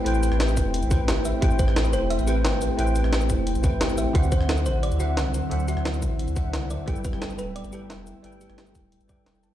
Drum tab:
HH |x-x-x-x-xxx-x-x-|x-x-x-x-xxx-x-x-|x-x-x-x-xxx-x-x-|x-x-x-x-xxx-x-x-|
SH |-xx--xx--xx---x-|-xx--xx--xx---x-|-xx--xx--xx--xx-|-xx--xx--xx---x-|
SD |---ro-------o---|---ro-------o---|---ro-------o---|---ro-------o---|
BD |------o---o-----|o-o-------------|------o---o-----|o-o-------------|

HH |x-x-x-x-xxx-x-x-|x-x-x-x-xxx-x-x-|x-xxx-x-xxx-x-x-|
SH |-xx--xx--xx---x-|-xx--xx--xx---x-|-xx--xx--xx--xx-|
SD |---ro-------o---|---ro-------o---|---ro-------o---|
BD |------o---o-----|o-o-------------|------o---o-----|